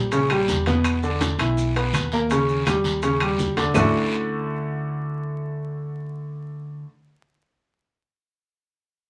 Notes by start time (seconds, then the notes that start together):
Already playing: A#1
0.11 C#3 C#4, high conga, high timbale, long guiro, maracas
0.30 G3 G4, high conga, high timbale, claves, maracas
0.48 E2, high conga, short guiro, maracas
0.66 B2 B3, high conga, high timbale, short guiro, maracas
0.84 high conga, high timbale, long guiro, claves, maracas
1.03 D3 D4, high conga, maracas
1.21 high conga, high timbale, short guiro, maracas
1.39 B1 E3 E4, high conga, high timbale, short guiro, claves, maracas
1.57 high conga, long guiro, maracas
1.75 B3 B4, high conga, high timbale, maracas
1.93 D#2, high conga, high timbale, short guiro, claves, maracas
2.12 A#3 A#4, short guiro, maracas
2.30 C#3 C#4, high conga, high timbale, long guiro, maracas
2.48 high conga, maracas
2.66 G3 G4, high conga, high timbale, short guiro, claves, maracas
2.84 D#2, short guiro, maracas
3.02 C#3 C#4, high conga, high timbale, long guiro, maracas
3.20 G3 G4, high conga, high timbale, claves, maracas
3.38 D2, high conga, short guiro, maracas
3.57 D3 D4, high conga, high timbale, short guiro, maracas
3.74 D2 D3 A3 C#4 D4 E4 F#4, low conga, low timbale, long guiro, claves, maracas